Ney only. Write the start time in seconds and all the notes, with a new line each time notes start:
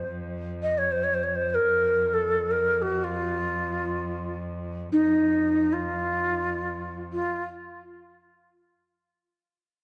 0.62 D#5
0.78 C#5
0.91 C5
1.03 C#5
1.14 C5
1.23 C#5
1.35 C5
1.50 C5
1.54 A#4
2.13 A4
2.51 A#4
2.82 F#4
3.04 F4
4.92 D#4
5.73 F4
7.13 F4